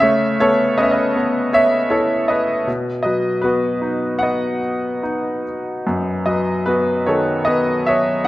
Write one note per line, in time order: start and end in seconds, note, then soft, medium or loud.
0.00 2.64 C#3 medium
0.00 1.49 A3 soft
0.00 0.37 C#5 medium
0.00 0.40 E5 medium
0.40 1.14 B3 soft
0.40 0.76 A4 medium
0.40 0.79 C#5 medium
0.78 2.25 C#4 soft
0.78 0.84 B4 medium
0.78 0.84 D#5 medium
0.83 0.90 E5 medium
0.91 1.15 B4 soft
0.91 1.14 D#5 medium
1.16 2.63 B3 soft
1.53 1.88 C#5 medium
1.53 1.93 E5 medium
1.90 2.64 E4 soft
1.90 2.26 A4 medium
1.90 2.30 C#5 medium
2.28 2.65 B4 medium
2.28 2.64 D#5 medium
2.67 5.84 B2 medium
3.03 4.59 F#3 soft
3.03 3.40 B4 soft
3.03 3.43 D#5 medium
3.41 4.20 B3 soft
3.41 4.18 F#4 soft
3.41 4.23 B4 medium
3.82 5.02 D#4 soft
4.19 5.83 B3 soft
4.19 5.41 F#5 medium
4.23 5.43 D#5 soft
5.03 6.63 D#4 soft
5.87 8.28 F#2 medium
6.26 7.82 F#3 soft
6.26 6.64 B4 soft
6.26 6.68 D#5 medium
6.66 7.45 B3 soft
6.66 7.05 F#4 soft
6.66 7.04 B4 medium
7.06 8.28 D#3 soft
7.06 7.45 A4 soft
7.06 7.48 C#5 medium
7.45 8.28 B3 soft
7.45 7.84 B4 medium
7.45 7.83 D#5 medium
7.86 8.24 C#5 medium
7.86 8.27 E5 medium
8.24 8.28 F#5 medium